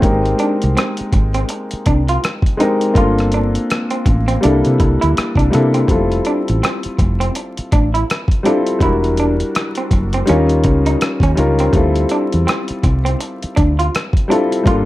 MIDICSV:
0, 0, Header, 1, 7, 480
1, 0, Start_track
1, 0, Tempo, 731707
1, 18, Time_signature, 4, 2, 24, 8
1, 9743, End_track
2, 0, Start_track
2, 0, Title_t, "Upright piano"
2, 0, Program_c, 0, 0
2, 0, Control_c, 0, 64, 127
2, 3, Note_on_c, 0, 56, 72
2, 12, Note_on_c, 0, 60, 71
2, 15, Note_on_c, 0, 63, 66
2, 21, Note_on_c, 0, 67, 68
2, 26, Control_c, 0, 64, 0
2, 29, Note_on_c, 0, 70, 77
2, 129, Control_c, 0, 64, 127
2, 830, Note_off_c, 0, 56, 0
2, 835, Note_off_c, 0, 60, 0
2, 836, Note_off_c, 0, 63, 0
2, 839, Note_off_c, 0, 67, 0
2, 843, Note_off_c, 0, 70, 0
2, 1687, Note_on_c, 0, 56, 76
2, 1696, Note_on_c, 0, 60, 66
2, 1703, Note_on_c, 0, 63, 73
2, 1709, Note_on_c, 0, 67, 68
2, 1715, Note_on_c, 0, 70, 86
2, 1901, Note_off_c, 0, 56, 0
2, 1905, Note_off_c, 0, 60, 0
2, 1908, Note_off_c, 0, 63, 0
2, 1912, Note_off_c, 0, 67, 0
2, 1915, Note_off_c, 0, 70, 0
2, 1926, Note_on_c, 0, 58, 78
2, 1935, Note_on_c, 0, 60, 66
2, 1941, Note_on_c, 0, 62, 69
2, 1945, Control_c, 0, 64, 0
2, 1946, Note_on_c, 0, 65, 68
2, 1951, Note_on_c, 0, 69, 83
2, 2071, Control_c, 0, 64, 127
2, 2752, Note_off_c, 0, 58, 0
2, 2756, Note_off_c, 0, 60, 0
2, 2759, Note_off_c, 0, 62, 0
2, 2762, Note_off_c, 0, 65, 0
2, 2764, Note_off_c, 0, 69, 0
2, 2891, Note_on_c, 0, 55, 77
2, 2900, Note_on_c, 0, 58, 71
2, 2905, Note_on_c, 0, 62, 73
2, 2906, Control_c, 0, 64, 0
2, 2914, Note_on_c, 0, 64, 68
2, 2919, Note_on_c, 0, 69, 84
2, 3022, Control_c, 0, 64, 127
2, 3519, Note_off_c, 0, 55, 0
2, 3523, Note_off_c, 0, 58, 0
2, 3526, Note_off_c, 0, 62, 0
2, 3530, Note_off_c, 0, 64, 0
2, 3533, Note_off_c, 0, 69, 0
2, 3610, Note_on_c, 0, 55, 75
2, 3619, Note_on_c, 0, 58, 70
2, 3625, Note_on_c, 0, 62, 70
2, 3632, Note_on_c, 0, 64, 72
2, 3637, Note_on_c, 0, 69, 81
2, 3822, Note_off_c, 0, 55, 0
2, 3826, Note_off_c, 0, 58, 0
2, 3829, Note_off_c, 0, 62, 0
2, 3833, Note_off_c, 0, 64, 0
2, 3835, Note_off_c, 0, 69, 0
2, 3852, Note_on_c, 0, 55, 72
2, 3860, Note_on_c, 0, 60, 68
2, 3866, Control_c, 0, 64, 0
2, 3866, Note_on_c, 0, 64, 65
2, 3873, Note_on_c, 0, 65, 66
2, 3878, Note_on_c, 0, 69, 76
2, 3983, Control_c, 0, 64, 127
2, 4675, Note_off_c, 0, 55, 0
2, 4679, Note_off_c, 0, 60, 0
2, 4682, Note_off_c, 0, 64, 0
2, 4686, Note_off_c, 0, 65, 0
2, 4688, Note_off_c, 0, 69, 0
2, 5530, Note_on_c, 0, 55, 77
2, 5538, Note_on_c, 0, 60, 70
2, 5544, Note_on_c, 0, 64, 69
2, 5553, Note_on_c, 0, 65, 67
2, 5557, Note_on_c, 0, 69, 85
2, 5742, Note_off_c, 0, 55, 0
2, 5746, Note_off_c, 0, 60, 0
2, 5749, Note_off_c, 0, 64, 0
2, 5753, Note_off_c, 0, 65, 0
2, 5756, Note_off_c, 0, 69, 0
2, 5765, Note_on_c, 0, 55, 77
2, 5772, Note_on_c, 0, 62, 67
2, 5777, Note_on_c, 0, 64, 64
2, 5785, Note_on_c, 0, 66, 69
2, 5786, Control_c, 0, 64, 0
2, 5794, Note_on_c, 0, 70, 78
2, 5904, Control_c, 0, 64, 127
2, 6591, Note_off_c, 0, 55, 0
2, 6595, Note_off_c, 0, 62, 0
2, 6598, Note_off_c, 0, 64, 0
2, 6601, Note_off_c, 0, 66, 0
2, 6606, Note_off_c, 0, 70, 0
2, 6727, Note_on_c, 0, 55, 81
2, 6735, Note_on_c, 0, 61, 71
2, 6740, Note_on_c, 0, 63, 72
2, 6747, Control_c, 0, 64, 0
2, 6748, Note_on_c, 0, 65, 76
2, 6751, Note_on_c, 0, 70, 82
2, 6843, Control_c, 0, 64, 127
2, 7357, Note_off_c, 0, 55, 0
2, 7361, Note_off_c, 0, 61, 0
2, 7363, Note_off_c, 0, 63, 0
2, 7367, Note_off_c, 0, 65, 0
2, 7369, Note_off_c, 0, 70, 0
2, 7448, Note_on_c, 0, 55, 79
2, 7456, Note_on_c, 0, 61, 71
2, 7465, Note_on_c, 0, 63, 69
2, 7469, Note_on_c, 0, 65, 71
2, 7475, Note_on_c, 0, 70, 90
2, 7661, Note_off_c, 0, 55, 0
2, 7665, Note_off_c, 0, 61, 0
2, 7669, Note_off_c, 0, 63, 0
2, 7671, Note_off_c, 0, 65, 0
2, 7675, Note_off_c, 0, 70, 0
2, 7689, Note_on_c, 0, 55, 77
2, 7697, Note_on_c, 0, 60, 73
2, 7704, Note_on_c, 0, 64, 68
2, 7706, Control_c, 0, 64, 0
2, 7708, Note_on_c, 0, 65, 70
2, 7715, Note_on_c, 0, 69, 79
2, 7811, Control_c, 0, 64, 127
2, 8513, Note_off_c, 0, 55, 0
2, 8517, Note_off_c, 0, 60, 0
2, 8521, Note_off_c, 0, 64, 0
2, 8523, Note_off_c, 0, 65, 0
2, 8526, Note_off_c, 0, 69, 0
2, 9367, Note_on_c, 0, 55, 78
2, 9375, Note_on_c, 0, 60, 71
2, 9381, Note_on_c, 0, 64, 73
2, 9389, Note_on_c, 0, 65, 73
2, 9396, Note_on_c, 0, 69, 88
2, 9580, Note_off_c, 0, 55, 0
2, 9585, Note_off_c, 0, 60, 0
2, 9588, Note_off_c, 0, 64, 0
2, 9592, Note_off_c, 0, 65, 0
2, 9595, Note_off_c, 0, 69, 0
2, 9600, Note_on_c, 0, 55, 74
2, 9607, Note_on_c, 0, 58, 67
2, 9614, Note_on_c, 0, 62, 68
2, 9619, Note_on_c, 0, 65, 69
2, 9625, Control_c, 0, 64, 0
2, 9625, Note_on_c, 0, 69, 82
2, 9737, Control_c, 0, 64, 127
2, 9743, Note_off_c, 0, 55, 0
2, 9743, Note_off_c, 0, 58, 0
2, 9743, Note_off_c, 0, 62, 0
2, 9743, Note_off_c, 0, 65, 0
2, 9743, Note_off_c, 0, 69, 0
2, 9743, End_track
3, 0, Start_track
3, 0, Title_t, "Clean electric guitar"
3, 0, Program_c, 1, 27
3, 261, Note_on_c, 1, 62, 75
3, 356, Note_off_c, 1, 62, 0
3, 503, Note_on_c, 1, 60, 73
3, 597, Note_off_c, 1, 60, 0
3, 882, Note_on_c, 1, 60, 71
3, 949, Note_off_c, 1, 60, 0
3, 1226, Note_on_c, 1, 62, 75
3, 1319, Note_off_c, 1, 62, 0
3, 1372, Note_on_c, 1, 65, 65
3, 1435, Note_off_c, 1, 65, 0
3, 1708, Note_on_c, 1, 63, 66
3, 1801, Note_off_c, 1, 63, 0
3, 1951, Note_on_c, 1, 65, 79
3, 2043, Note_off_c, 1, 65, 0
3, 2192, Note_on_c, 1, 62, 65
3, 2283, Note_off_c, 1, 62, 0
3, 2564, Note_on_c, 1, 60, 59
3, 2629, Note_off_c, 1, 60, 0
3, 2807, Note_on_c, 1, 60, 71
3, 2871, Note_off_c, 1, 60, 0
3, 2911, Note_on_c, 1, 62, 77
3, 3003, Note_off_c, 1, 62, 0
3, 3289, Note_on_c, 1, 64, 65
3, 3353, Note_off_c, 1, 64, 0
3, 3525, Note_on_c, 1, 62, 67
3, 3590, Note_off_c, 1, 62, 0
3, 3768, Note_on_c, 1, 60, 58
3, 3832, Note_off_c, 1, 60, 0
3, 4110, Note_on_c, 1, 62, 69
3, 4202, Note_off_c, 1, 62, 0
3, 4351, Note_on_c, 1, 60, 78
3, 4443, Note_off_c, 1, 60, 0
3, 4725, Note_on_c, 1, 60, 70
3, 4790, Note_off_c, 1, 60, 0
3, 5071, Note_on_c, 1, 62, 73
3, 5163, Note_off_c, 1, 62, 0
3, 5209, Note_on_c, 1, 64, 62
3, 5273, Note_off_c, 1, 64, 0
3, 5549, Note_on_c, 1, 62, 66
3, 5641, Note_off_c, 1, 62, 0
3, 5790, Note_on_c, 1, 64, 81
3, 5882, Note_off_c, 1, 64, 0
3, 6033, Note_on_c, 1, 62, 67
3, 6124, Note_off_c, 1, 62, 0
3, 6413, Note_on_c, 1, 60, 61
3, 6475, Note_off_c, 1, 60, 0
3, 6653, Note_on_c, 1, 60, 72
3, 6715, Note_off_c, 1, 60, 0
3, 6752, Note_on_c, 1, 61, 76
3, 6843, Note_off_c, 1, 61, 0
3, 7128, Note_on_c, 1, 63, 71
3, 7192, Note_off_c, 1, 63, 0
3, 7369, Note_on_c, 1, 61, 71
3, 7433, Note_off_c, 1, 61, 0
3, 7610, Note_on_c, 1, 60, 64
3, 7674, Note_off_c, 1, 60, 0
3, 7947, Note_on_c, 1, 62, 69
3, 8040, Note_off_c, 1, 62, 0
3, 8181, Note_on_c, 1, 60, 75
3, 8276, Note_off_c, 1, 60, 0
3, 8561, Note_on_c, 1, 60, 72
3, 8628, Note_off_c, 1, 60, 0
3, 8898, Note_on_c, 1, 62, 81
3, 8994, Note_off_c, 1, 62, 0
3, 9046, Note_on_c, 1, 65, 68
3, 9111, Note_off_c, 1, 65, 0
3, 9381, Note_on_c, 1, 62, 67
3, 9476, Note_off_c, 1, 62, 0
3, 9626, Note_on_c, 1, 65, 80
3, 9720, Note_off_c, 1, 65, 0
3, 9743, End_track
4, 0, Start_track
4, 0, Title_t, "Fretless electric bass"
4, 0, Program_c, 2, 35
4, 21, Note_on_c, 2, 32, 96
4, 217, Note_off_c, 2, 32, 0
4, 417, Note_on_c, 2, 36, 76
4, 491, Note_off_c, 2, 36, 0
4, 745, Note_on_c, 2, 32, 72
4, 939, Note_off_c, 2, 32, 0
4, 1231, Note_on_c, 2, 36, 86
4, 1423, Note_off_c, 2, 36, 0
4, 1945, Note_on_c, 2, 31, 88
4, 2336, Note_off_c, 2, 31, 0
4, 2671, Note_on_c, 2, 33, 74
4, 2863, Note_off_c, 2, 33, 0
4, 2919, Note_on_c, 2, 36, 94
4, 3026, Note_off_c, 2, 36, 0
4, 3058, Note_on_c, 2, 48, 85
4, 3131, Note_off_c, 2, 48, 0
4, 3155, Note_on_c, 2, 36, 72
4, 3264, Note_off_c, 2, 36, 0
4, 3302, Note_on_c, 2, 38, 73
4, 3374, Note_off_c, 2, 38, 0
4, 3520, Note_on_c, 2, 36, 74
4, 3601, Note_off_c, 2, 36, 0
4, 3639, Note_on_c, 2, 48, 84
4, 3827, Note_off_c, 2, 48, 0
4, 3866, Note_on_c, 2, 29, 90
4, 4060, Note_off_c, 2, 29, 0
4, 4260, Note_on_c, 2, 33, 79
4, 4332, Note_off_c, 2, 33, 0
4, 4591, Note_on_c, 2, 29, 80
4, 4783, Note_off_c, 2, 29, 0
4, 5076, Note_on_c, 2, 33, 72
4, 5266, Note_off_c, 2, 33, 0
4, 5786, Note_on_c, 2, 28, 88
4, 6177, Note_off_c, 2, 28, 0
4, 6508, Note_on_c, 2, 30, 82
4, 6701, Note_off_c, 2, 30, 0
4, 6754, Note_on_c, 2, 39, 84
4, 6991, Note_on_c, 2, 37, 83
4, 7001, Note_off_c, 2, 39, 0
4, 7183, Note_off_c, 2, 37, 0
4, 7356, Note_on_c, 2, 39, 75
4, 7439, Note_off_c, 2, 39, 0
4, 7466, Note_on_c, 2, 37, 82
4, 7660, Note_off_c, 2, 37, 0
4, 7703, Note_on_c, 2, 38, 91
4, 7898, Note_off_c, 2, 38, 0
4, 8093, Note_on_c, 2, 40, 70
4, 8168, Note_off_c, 2, 40, 0
4, 8428, Note_on_c, 2, 36, 82
4, 8621, Note_off_c, 2, 36, 0
4, 8914, Note_on_c, 2, 38, 72
4, 9104, Note_off_c, 2, 38, 0
4, 9626, Note_on_c, 2, 31, 92
4, 9743, Note_off_c, 2, 31, 0
4, 9743, End_track
5, 0, Start_track
5, 0, Title_t, "Muted clean electric guitar strokes"
5, 744, Note_on_c, 9, 29, 38
5, 810, Note_off_c, 9, 29, 0
5, 985, Note_on_c, 9, 29, 42
5, 1050, Note_off_c, 9, 29, 0
5, 2668, Note_on_c, 9, 29, 41
5, 2734, Note_off_c, 9, 29, 0
5, 3151, Note_on_c, 9, 29, 40
5, 3216, Note_off_c, 9, 29, 0
5, 3628, Note_on_c, 9, 29, 38
5, 3694, Note_off_c, 9, 29, 0
5, 4587, Note_on_c, 9, 29, 39
5, 4653, Note_off_c, 9, 29, 0
5, 4830, Note_on_c, 9, 29, 42
5, 4896, Note_off_c, 9, 29, 0
5, 6515, Note_on_c, 9, 29, 42
5, 6580, Note_off_c, 9, 29, 0
5, 6984, Note_on_c, 9, 29, 41
5, 7049, Note_off_c, 9, 29, 0
5, 7466, Note_on_c, 9, 29, 42
5, 7532, Note_off_c, 9, 29, 0
5, 8423, Note_on_c, 9, 29, 41
5, 8489, Note_off_c, 9, 29, 0
5, 8663, Note_on_c, 9, 29, 41
5, 8728, Note_off_c, 9, 29, 0
5, 9743, End_track
6, 0, Start_track
6, 0, Title_t, "Muted fretless electric bass strokes"
6, 659, Note_on_c, 9, 29, 43
6, 724, Note_off_c, 9, 29, 0
6, 1137, Note_on_c, 9, 29, 41
6, 1202, Note_off_c, 9, 29, 0
6, 3401, Note_on_c, 9, 29, 42
6, 3467, Note_off_c, 9, 29, 0
6, 4497, Note_on_c, 9, 29, 39
6, 4562, Note_off_c, 9, 29, 0
6, 4976, Note_on_c, 9, 29, 42
6, 5041, Note_off_c, 9, 29, 0
6, 8333, Note_on_c, 9, 29, 42
6, 8399, Note_off_c, 9, 29, 0
6, 8815, Note_on_c, 9, 29, 42
6, 8880, Note_off_c, 9, 29, 0
6, 9743, End_track
7, 0, Start_track
7, 0, Title_t, "Drums"
7, 15, Note_on_c, 9, 36, 95
7, 21, Note_on_c, 9, 42, 66
7, 81, Note_off_c, 9, 36, 0
7, 87, Note_off_c, 9, 42, 0
7, 168, Note_on_c, 9, 42, 36
7, 233, Note_off_c, 9, 42, 0
7, 256, Note_on_c, 9, 42, 57
7, 321, Note_off_c, 9, 42, 0
7, 405, Note_on_c, 9, 42, 43
7, 470, Note_off_c, 9, 42, 0
7, 507, Note_on_c, 9, 42, 73
7, 515, Note_on_c, 9, 37, 96
7, 573, Note_off_c, 9, 42, 0
7, 580, Note_off_c, 9, 37, 0
7, 636, Note_on_c, 9, 42, 49
7, 702, Note_off_c, 9, 42, 0
7, 738, Note_on_c, 9, 36, 86
7, 738, Note_on_c, 9, 42, 60
7, 803, Note_off_c, 9, 36, 0
7, 803, Note_off_c, 9, 42, 0
7, 881, Note_on_c, 9, 42, 47
7, 947, Note_off_c, 9, 42, 0
7, 975, Note_on_c, 9, 42, 79
7, 1041, Note_off_c, 9, 42, 0
7, 1121, Note_on_c, 9, 42, 43
7, 1186, Note_off_c, 9, 42, 0
7, 1219, Note_on_c, 9, 42, 62
7, 1223, Note_on_c, 9, 36, 89
7, 1284, Note_off_c, 9, 42, 0
7, 1288, Note_off_c, 9, 36, 0
7, 1368, Note_on_c, 9, 42, 49
7, 1433, Note_off_c, 9, 42, 0
7, 1468, Note_on_c, 9, 42, 73
7, 1475, Note_on_c, 9, 37, 83
7, 1533, Note_off_c, 9, 42, 0
7, 1540, Note_off_c, 9, 37, 0
7, 1590, Note_on_c, 9, 36, 90
7, 1616, Note_on_c, 9, 42, 45
7, 1656, Note_off_c, 9, 36, 0
7, 1681, Note_off_c, 9, 42, 0
7, 1706, Note_on_c, 9, 42, 65
7, 1772, Note_off_c, 9, 42, 0
7, 1844, Note_on_c, 9, 42, 48
7, 1909, Note_off_c, 9, 42, 0
7, 1936, Note_on_c, 9, 36, 99
7, 1942, Note_on_c, 9, 42, 71
7, 2001, Note_off_c, 9, 36, 0
7, 2008, Note_off_c, 9, 42, 0
7, 2089, Note_on_c, 9, 42, 37
7, 2100, Note_on_c, 9, 37, 31
7, 2154, Note_off_c, 9, 42, 0
7, 2166, Note_off_c, 9, 37, 0
7, 2176, Note_on_c, 9, 42, 53
7, 2241, Note_off_c, 9, 42, 0
7, 2329, Note_on_c, 9, 42, 46
7, 2395, Note_off_c, 9, 42, 0
7, 2430, Note_on_c, 9, 42, 77
7, 2437, Note_on_c, 9, 37, 93
7, 2495, Note_off_c, 9, 42, 0
7, 2503, Note_off_c, 9, 37, 0
7, 2562, Note_on_c, 9, 42, 49
7, 2628, Note_off_c, 9, 42, 0
7, 2662, Note_on_c, 9, 36, 82
7, 2663, Note_on_c, 9, 42, 59
7, 2727, Note_off_c, 9, 36, 0
7, 2729, Note_off_c, 9, 42, 0
7, 2809, Note_on_c, 9, 42, 47
7, 2875, Note_off_c, 9, 42, 0
7, 2906, Note_on_c, 9, 42, 78
7, 2972, Note_off_c, 9, 42, 0
7, 3048, Note_on_c, 9, 42, 43
7, 3113, Note_off_c, 9, 42, 0
7, 3147, Note_on_c, 9, 36, 95
7, 3147, Note_on_c, 9, 42, 58
7, 3212, Note_off_c, 9, 42, 0
7, 3213, Note_off_c, 9, 36, 0
7, 3293, Note_on_c, 9, 42, 49
7, 3359, Note_off_c, 9, 42, 0
7, 3393, Note_on_c, 9, 42, 76
7, 3400, Note_on_c, 9, 37, 89
7, 3458, Note_off_c, 9, 42, 0
7, 3465, Note_off_c, 9, 37, 0
7, 3513, Note_on_c, 9, 36, 88
7, 3536, Note_on_c, 9, 42, 45
7, 3579, Note_off_c, 9, 36, 0
7, 3602, Note_off_c, 9, 42, 0
7, 3630, Note_on_c, 9, 42, 63
7, 3639, Note_on_c, 9, 37, 31
7, 3695, Note_off_c, 9, 42, 0
7, 3705, Note_off_c, 9, 37, 0
7, 3767, Note_on_c, 9, 42, 47
7, 3832, Note_off_c, 9, 42, 0
7, 3859, Note_on_c, 9, 36, 97
7, 3865, Note_on_c, 9, 42, 69
7, 3925, Note_off_c, 9, 36, 0
7, 3930, Note_off_c, 9, 42, 0
7, 4012, Note_on_c, 9, 42, 38
7, 4078, Note_off_c, 9, 42, 0
7, 4099, Note_on_c, 9, 42, 54
7, 4164, Note_off_c, 9, 42, 0
7, 4252, Note_on_c, 9, 42, 45
7, 4317, Note_off_c, 9, 42, 0
7, 4353, Note_on_c, 9, 42, 75
7, 4360, Note_on_c, 9, 37, 93
7, 4418, Note_off_c, 9, 42, 0
7, 4426, Note_off_c, 9, 37, 0
7, 4482, Note_on_c, 9, 42, 46
7, 4548, Note_off_c, 9, 42, 0
7, 4582, Note_on_c, 9, 36, 87
7, 4586, Note_on_c, 9, 42, 63
7, 4648, Note_off_c, 9, 36, 0
7, 4651, Note_off_c, 9, 42, 0
7, 4730, Note_on_c, 9, 42, 49
7, 4795, Note_off_c, 9, 42, 0
7, 4823, Note_on_c, 9, 42, 83
7, 4889, Note_off_c, 9, 42, 0
7, 4969, Note_on_c, 9, 42, 44
7, 5035, Note_off_c, 9, 42, 0
7, 5065, Note_on_c, 9, 42, 61
7, 5067, Note_on_c, 9, 36, 91
7, 5131, Note_off_c, 9, 42, 0
7, 5132, Note_off_c, 9, 36, 0
7, 5214, Note_on_c, 9, 42, 52
7, 5280, Note_off_c, 9, 42, 0
7, 5314, Note_on_c, 9, 42, 75
7, 5320, Note_on_c, 9, 37, 87
7, 5379, Note_off_c, 9, 42, 0
7, 5386, Note_off_c, 9, 37, 0
7, 5431, Note_on_c, 9, 36, 92
7, 5454, Note_on_c, 9, 42, 46
7, 5497, Note_off_c, 9, 36, 0
7, 5519, Note_off_c, 9, 42, 0
7, 5546, Note_on_c, 9, 42, 60
7, 5611, Note_off_c, 9, 42, 0
7, 5684, Note_on_c, 9, 42, 50
7, 5750, Note_off_c, 9, 42, 0
7, 5776, Note_on_c, 9, 36, 93
7, 5780, Note_on_c, 9, 42, 69
7, 5841, Note_off_c, 9, 36, 0
7, 5846, Note_off_c, 9, 42, 0
7, 5930, Note_on_c, 9, 42, 38
7, 5996, Note_off_c, 9, 42, 0
7, 6018, Note_on_c, 9, 42, 59
7, 6084, Note_off_c, 9, 42, 0
7, 6167, Note_on_c, 9, 42, 45
7, 6232, Note_off_c, 9, 42, 0
7, 6266, Note_on_c, 9, 42, 79
7, 6273, Note_on_c, 9, 37, 91
7, 6331, Note_off_c, 9, 42, 0
7, 6339, Note_off_c, 9, 37, 0
7, 6397, Note_on_c, 9, 42, 46
7, 6462, Note_off_c, 9, 42, 0
7, 6499, Note_on_c, 9, 36, 88
7, 6501, Note_on_c, 9, 42, 63
7, 6565, Note_off_c, 9, 36, 0
7, 6567, Note_off_c, 9, 42, 0
7, 6644, Note_on_c, 9, 42, 46
7, 6709, Note_off_c, 9, 42, 0
7, 6738, Note_on_c, 9, 42, 77
7, 6804, Note_off_c, 9, 42, 0
7, 6884, Note_on_c, 9, 42, 44
7, 6949, Note_off_c, 9, 42, 0
7, 6977, Note_on_c, 9, 42, 58
7, 6983, Note_on_c, 9, 36, 91
7, 7043, Note_off_c, 9, 42, 0
7, 7048, Note_off_c, 9, 36, 0
7, 7125, Note_on_c, 9, 42, 51
7, 7191, Note_off_c, 9, 42, 0
7, 7223, Note_on_c, 9, 42, 77
7, 7230, Note_on_c, 9, 37, 94
7, 7289, Note_off_c, 9, 42, 0
7, 7296, Note_off_c, 9, 37, 0
7, 7348, Note_on_c, 9, 36, 92
7, 7367, Note_on_c, 9, 42, 44
7, 7413, Note_off_c, 9, 36, 0
7, 7432, Note_off_c, 9, 42, 0
7, 7461, Note_on_c, 9, 42, 62
7, 7527, Note_off_c, 9, 42, 0
7, 7601, Note_on_c, 9, 42, 50
7, 7667, Note_off_c, 9, 42, 0
7, 7694, Note_on_c, 9, 36, 102
7, 7698, Note_on_c, 9, 42, 69
7, 7760, Note_off_c, 9, 36, 0
7, 7763, Note_off_c, 9, 42, 0
7, 7842, Note_on_c, 9, 42, 40
7, 7908, Note_off_c, 9, 42, 0
7, 7932, Note_on_c, 9, 42, 57
7, 7997, Note_off_c, 9, 42, 0
7, 8085, Note_on_c, 9, 42, 43
7, 8151, Note_off_c, 9, 42, 0
7, 8187, Note_on_c, 9, 42, 80
7, 8195, Note_on_c, 9, 37, 95
7, 8253, Note_off_c, 9, 42, 0
7, 8261, Note_off_c, 9, 37, 0
7, 8318, Note_on_c, 9, 42, 48
7, 8384, Note_off_c, 9, 42, 0
7, 8419, Note_on_c, 9, 36, 87
7, 8421, Note_on_c, 9, 42, 61
7, 8485, Note_off_c, 9, 36, 0
7, 8486, Note_off_c, 9, 42, 0
7, 8568, Note_on_c, 9, 42, 48
7, 8634, Note_off_c, 9, 42, 0
7, 8662, Note_on_c, 9, 42, 77
7, 8728, Note_off_c, 9, 42, 0
7, 8807, Note_on_c, 9, 42, 44
7, 8872, Note_off_c, 9, 42, 0
7, 8902, Note_on_c, 9, 42, 62
7, 8904, Note_on_c, 9, 36, 89
7, 8968, Note_off_c, 9, 42, 0
7, 8969, Note_off_c, 9, 36, 0
7, 9049, Note_on_c, 9, 42, 50
7, 9114, Note_off_c, 9, 42, 0
7, 9149, Note_on_c, 9, 42, 81
7, 9156, Note_on_c, 9, 37, 92
7, 9214, Note_off_c, 9, 42, 0
7, 9221, Note_off_c, 9, 37, 0
7, 9270, Note_on_c, 9, 36, 92
7, 9294, Note_on_c, 9, 42, 46
7, 9336, Note_off_c, 9, 36, 0
7, 9359, Note_off_c, 9, 42, 0
7, 9390, Note_on_c, 9, 42, 64
7, 9456, Note_off_c, 9, 42, 0
7, 9528, Note_on_c, 9, 42, 49
7, 9593, Note_off_c, 9, 42, 0
7, 9616, Note_on_c, 9, 36, 93
7, 9622, Note_on_c, 9, 42, 67
7, 9681, Note_off_c, 9, 36, 0
7, 9688, Note_off_c, 9, 42, 0
7, 9743, End_track
0, 0, End_of_file